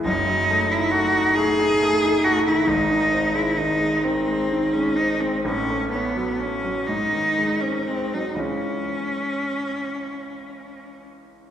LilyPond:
<<
  \new Staff \with { instrumentName = "Cello" } { \time 6/8 \key cis \minor \tempo 4. = 42 dis'8. e'16 fis'8 gis'4 fis'16 e'16 | dis'8. e'16 dis'8 bis8. cis'16 dis'16 bis16 | cis'8 b8 cis'8 dis'8. cis'16 bis16 dis'16 | cis'2~ cis'8 r8 | }
  \new Staff \with { instrumentName = "Grand piano" } { \clef bass \time 6/8 \key cis \minor <fis,, fis,>16 fis16 a16 dis'16 a16 dis'16 a16 dis'16 a16 dis'16 a16 dis16 | <gis,, gis,>16 dis16 bis16 gis16 dis16 gis16 dis16 gis16 dis16 gis16 bis16 gis16 | <a,, a,>16 a16 cis'16 fis16 cis'16 fis16 gis,16 dis16 gis16 bis16 gis16 fis16 | <cis, e gis cis'>2. | }
>>